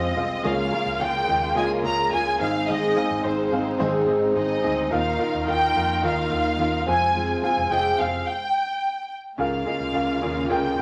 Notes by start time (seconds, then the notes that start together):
Already playing: F2 G#3 C4 F4 G#4 D#5 F5 G5
0.16 C2 C4 F4 G#4 F5
0.43 C#2 G#2 C#3 G#3 A#3 C#4 F4 G#4 A#4 C#5 F5
0.71 A#3 C#4 F4 G#4 A#4 C#5
0.86 C#2
0.99 C#2 G#3 A#3 C#4 F4 G#4 A#4 C#5 G5
1.28 D#2 A#3 F4 G#4 D#5
1.55 C#2 C#3 G#3 A#3 C#4 F4 G#4 A#4 D#5 G#5
1.83 C#2 A#3 F4 G#4 C#5 A#5
2.11 C#2 G#3 A#3 C#4 F4 G#4 A#4 C#5 G#5
2.39 G#1 G#2 D#3 G#3 C4 D#4 G#4 D#5 F5
2.68 G#2 D#3 G#3 C4 D#4 G#4 D#5
2.95 G#3 C4 D#4 G#4 F5
3.11 G#1
3.23 G#1 G#3 C4 D#4 G#4 C5 D#5
3.51 G#1 G#3 C4 D#4 G#4 F5
3.78 G#1 G#2 D#3 G#3 C4 D#4 G#4 C5
4.06 G#1 C4 D#4 G#4 D#5
4.34 G#1 G#3 C4 D#4 G#4 D#5
4.63 D2 G#3 C4 D#4 G#4 D#5
4.90 D#2 A#2 D#3 A#3 D#4 F4 A#4 F5
5.18 D#4 F4 A#4 F5
5.34 D#2
5.47 D#2 A#3 D#4 F4 A#4 F5 G5
5.75 F2 D#4 F4 A#4 F5
6.02 D#2 D#3 A#3 D#4 F4 A#4 F5
6.30 D#2 D#4 F4 A#4 F5
6.58 D#2 A#3 D#4 F4 A#4 F5
6.86 F2 C3 G#3 C4 F4 G#4 F5 G#5
7.14 F3 G#3 C4 F4 G#4
7.42 C4 F4 G#4 F5 G#5
7.57 F1
7.70 F1 G#3 C4 F4 G#4 D#5 G5
7.98 F1 C4 F4 G#4 F5
8.27 G5
9.38 C#2 G#2 C#3 G#3 A#3 C#4 F4 G#4 A#4 F5
9.66 C#4 F4 G#4 A#4 D#5
9.81 C#2
9.93 C#2 C#4 F4 G#4 A#4 F5
10.22 D#2 C#4 F4 G#4 A#4 C#5
10.49 C#2 C#4 F4 G#4 A#4 G5
10.78 C#4 F4 G#4